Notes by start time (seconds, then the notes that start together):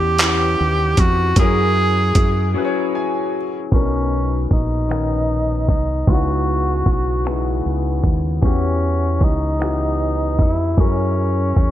Already playing: E2 E3 B3 C#4 G4 F#5
0.18 B3 C#4 E4 F#5, clap, closed hi-hat
0.23 G4
0.61 D#2
0.97 F2 F#4, kick, closed hi-hat
1.36 F#2 F#3 C#4 E4 G#4, kick, closed hi-hat
1.41 A#4
2.15 F#2, kick, closed hi-hat
2.54 F#3 C#4 E4 G#4 B4
2.65 C#5
2.95 G#5
3.71 B1 B2 B3 C#4 D4 A#4, kick, closed hi-hat
3.81 D#4
4.51 A#1 D#4, kick, closed hi-hat
4.88 D#3 B3 C#4 D#4 A#4, finger snap, closed hi-hat
5.68 C2 D#4, kick, closed hi-hat
6.07 C#2 C#3 G#3 B3 D#4 E4 F#4, kick, closed hi-hat
6.86 B1, kick, closed hi-hat
7.25 C#3 G#3 B3 D#4 E4, finger snap, closed hi-hat
7.29 F#4
7.66 C#2
8.04 D#2, kick, closed hi-hat
8.41 E2 E3 B3 C#4 F#4, kick, closed hi-hat
8.46 G4
9.21 C#2 D#4, kick, closed hi-hat
9.59 E3 B3 C#4 F#4 G4, finger snap, closed hi-hat
10.39 F2 E4, kick, closed hi-hat
10.77 F#2 F#3 C#4 E4 G#4 A#4, kick, closed hi-hat
11.57 E2, kick, closed hi-hat